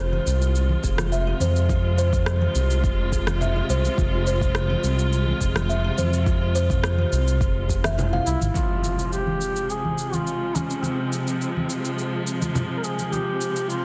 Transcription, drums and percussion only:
0.12 high conga medium
0.27 cabasa medium
0.42 cabasa soft
0.55 cabasa soft
0.69 high conga medium
0.84 kick medium
0.84 cabasa medium
0.98 cross-stick medium
0.98 high conga medium
0.98 cabasa soft
1.12 cabasa soft
1.40 high conga medium
1.40 cabasa medium
1.56 cabasa soft
1.69 kick loud
1.69 muted conga medium
1.69 cabasa soft
1.98 cabasa medium
2.13 kick loud
2.13 cabasa soft
2.26 cross-stick medium
2.26 cabasa soft
2.41 high conga medium
2.55 cabasa medium
2.70 cabasa soft
2.84 kick loud
2.84 cabasa soft
3.12 kick medium
3.12 cabasa medium
3.27 cross-stick medium
3.27 high conga medium
3.27 cabasa soft
3.41 low conga medium
3.41 cabasa soft
3.70 cabasa medium
3.85 muted conga soft
3.85 cabasa soft
3.98 kick loud
3.98 muted conga medium
3.98 cabasa soft
4.27 cabasa medium
4.41 kick medium
4.41 cabasa soft
4.55 cross-stick medium
4.55 cabasa soft
4.70 high conga medium
4.84 cabasa medium
4.99 cabasa soft
5.13 cabasa soft
5.26 high conga medium
5.41 kick medium
5.41 cabasa medium
5.55 cross-stick medium
5.55 high conga medium
5.55 cabasa soft
5.70 cabasa soft
5.98 high conga medium
5.98 cabasa medium
6.13 cabasa soft
6.26 kick loud
6.26 muted conga medium
6.26 cabasa soft
6.55 cabasa medium
6.70 kick medium
6.70 low conga medium
6.70 cabasa soft
6.84 cross-stick medium
6.84 cabasa soft
6.98 high conga medium
7.13 cabasa medium
7.28 cabasa soft
7.41 kick loud
7.41 cabasa soft
7.69 kick medium
7.69 cabasa medium
7.84 cross-stick medium
7.84 high conga medium
7.84 cabasa soft
7.99 low conga medium
7.99 cabasa soft
8.13 muted conga soft
8.13 low conga medium
8.27 cabasa medium
8.41 muted conga soft
8.41 cabasa soft
8.54 muted conga medium
8.54 cabasa soft
8.84 cabasa medium
8.99 cabasa soft
9.13 cabasa soft
9.27 high conga medium
9.41 cabasa medium
9.56 cabasa soft
9.70 cabasa soft
9.85 high conga medium
9.98 cabasa medium
10.13 high conga medium
10.13 cabasa soft
10.27 cabasa soft
10.55 high conga medium
10.55 cabasa medium
10.70 cabasa soft
10.83 muted conga medium
10.83 cabasa soft
11.13 cabasa medium
11.27 cabasa soft
11.41 cabasa soft
11.57 high conga medium
11.70 cabasa medium
11.85 cabasa soft
11.99 cabasa soft
12.27 cabasa medium
12.42 high conga medium
12.42 cabasa soft
12.55 low conga medium
12.55 cabasa soft
12.84 cabasa medium
12.99 muted conga soft
12.99 cabasa soft
13.13 muted conga medium
13.13 cabasa soft
13.41 cabasa medium
13.56 cabasa soft
13.70 cabasa soft

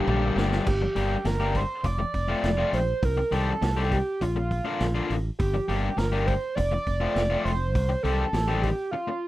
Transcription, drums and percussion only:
0.08 mid tom medium
0.37 snare loud
0.52 snare medium
0.66 kick loud
0.66 crash medium
0.96 open hi-hat soft
1.25 snare loud
1.25 open hi-hat medium
1.55 kick medium
1.55 open hi-hat soft
1.84 kick medium
1.84 open hi-hat medium
2.14 kick medium
2.14 open hi-hat soft
2.44 snare medium
2.44 open hi-hat medium
2.73 open hi-hat medium
3.03 kick loud
3.03 open hi-hat medium
3.32 open hi-hat medium
3.62 snare loud
3.62 open hi-hat medium
3.92 kick medium
3.92 open hi-hat soft
4.21 kick medium
4.21 open hi-hat medium
4.51 kick medium
4.51 open hi-hat soft
4.80 snare medium
4.80 open hi-hat soft
5.10 open hi-hat soft
5.40 kick loud
5.40 open hi-hat medium
5.69 open hi-hat soft
5.98 snare loud
5.98 open hi-hat medium
6.28 kick medium
6.28 open hi-hat soft
6.57 kick medium
6.57 open hi-hat medium
6.87 kick medium
6.87 open hi-hat soft
7.16 snare loud
7.16 open hi-hat medium
7.46 open hi-hat medium
7.75 kick loud
7.75 open hi-hat medium
8.05 open hi-hat soft
8.34 snare loud
8.34 open hi-hat medium
8.64 kick medium
8.64 open hi-hat soft

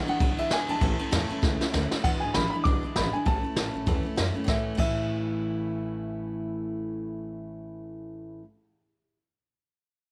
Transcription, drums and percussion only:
0.08 ride medium
0.20 kick loud
0.20 ride medium
0.38 ride medium
0.51 snare loud
0.51 ride loud
0.69 ride medium
0.81 kick loud
0.81 ride medium
0.99 ride medium
1.12 snare loud
1.12 ride medium
1.30 ride medium
1.43 kick loud
1.43 snare medium
1.61 snare medium
1.74 snare loud
1.91 snare medium
2.04 kick loud
2.04 crash loud
2.34 snare loud
2.34 open hi-hat medium
2.65 kick loud
2.65 open hi-hat medium
2.96 snare loud
2.96 open hi-hat medium
3.26 kick loud
3.26 open hi-hat medium
3.56 snare loud
3.87 kick loud
3.87 open hi-hat medium
4.17 snare loud
4.48 kick loud
4.48 snare medium
4.78 kick loud
4.78 crash medium

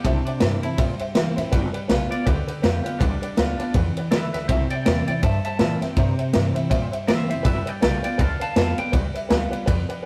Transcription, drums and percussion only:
0.05 kick loud
0.05 ride medium
0.26 ride medium
0.40 snare loud
0.40 ride medium
0.63 ride medium
0.78 kick loud
0.78 ride medium
0.99 ride medium
1.15 snare loud
1.15 ride medium
1.38 snare soft
1.38 ride medium
1.52 kick loud
1.52 ride medium
1.74 ride medium
1.89 snare loud
1.89 ride medium
2.12 ride medium
2.27 kick loud
2.27 ride medium
2.48 ride medium
2.64 snare loud
2.64 ride medium
2.86 ride medium
3.01 kick loud
3.01 ride medium
3.23 ride medium
3.37 snare loud
3.37 ride medium
3.60 ride medium
3.74 kick loud
3.74 ride medium
3.97 ride medium
4.11 snare loud
4.11 ride medium
4.34 snare soft
4.34 ride medium
4.49 kick loud
4.49 ride medium
4.70 ride medium
4.86 snare loud
4.86 ride medium
5.07 ride medium
5.23 kick loud
5.23 ride medium
5.45 ride medium
5.59 snare loud
5.59 ride medium
5.82 snare soft
5.82 ride medium
5.96 kick loud
5.96 ride medium
6.19 ride medium
6.33 snare loud
6.33 ride medium
6.56 ride medium
6.71 kick loud
6.71 ride medium
6.93 ride medium
7.08 snare loud
7.08 ride medium
7.30 ride medium
7.45 kick loud
7.45 ride medium
7.67 ride medium
7.82 snare loud
7.82 ride medium
8.04 ride medium
8.19 kick loud
8.19 ride medium
8.41 ride medium
8.56 snare loud
8.56 ride medium
8.78 ride medium
8.93 kick loud
8.93 ride medium
9.15 ride medium
9.30 snare loud
9.30 ride medium
9.53 ride medium
9.68 kick loud
9.68 ride medium
9.89 ride medium

